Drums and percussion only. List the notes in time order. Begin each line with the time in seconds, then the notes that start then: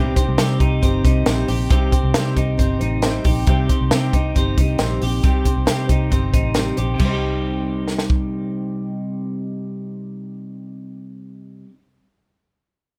0.16 kick, closed hi-hat
0.38 snare, closed hi-hat
0.60 kick, closed hi-hat
0.83 kick, closed hi-hat
1.05 kick, closed hi-hat
1.26 snare, closed hi-hat
1.48 open hi-hat
1.70 kick, closed hi-hat
1.92 kick, closed hi-hat
2.14 snare, closed hi-hat
2.37 kick, closed hi-hat
2.59 kick, closed hi-hat
2.81 closed hi-hat
3.02 snare, closed hi-hat
3.24 kick, open hi-hat
3.47 kick, closed hi-hat
3.69 kick, closed hi-hat
3.91 snare, closed hi-hat
4.13 kick, closed hi-hat
4.36 kick, closed hi-hat
4.58 kick, closed hi-hat
4.79 snare, closed hi-hat
5.02 open hi-hat
5.23 kick, closed hi-hat
5.45 kick, closed hi-hat
5.67 snare, closed hi-hat
5.89 kick, closed hi-hat
6.12 kick, closed hi-hat
6.34 kick, closed hi-hat
6.54 snare, closed hi-hat
6.77 closed hi-hat
7.00 kick, crash
7.88 snare
7.99 snare
8.10 kick